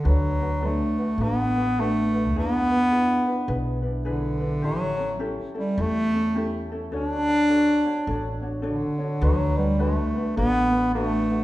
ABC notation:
X:1
M:4/4
L:1/8
Q:"Swing" 1/4=105
K:D
V:1 name="Ukulele"
[DFAB] [DFB] [DFAB] [DFB] [DFAB] [DFB] [DFAB] [DFB] | [DE^GB] [DEB] [DEGB] [DEB] [DEGB] [DEB] [DEGB] [DEB] | [CEGA] [CEA] [CEGA] [CEA] [CEGA] [CEA] [CEGA] [CEA] | [DFAc] [DFc] [DFAc] [DFc] [DFAc] [DFc] [DFAc] [DFc] |
[DFAB] [DFB] [DFAB] [DFB] [DFAB] [DFB] [DFAB] [DFB] |]
V:2 name="Bass clarinet"
F,2 A,2 B,2 A,2 | B,4- B, z D,2 | F,2 z G, A,3 z | D6 D,2 |
F, G, A,2 B,2 A,2 |]
V:3 name="Upright bass" clef=bass
D,,4 A,,,4 | E,,4 B,,,4 | A,,,4 E,,4 | D,,4 A,,,4 |
D,,4 A,,,4 |]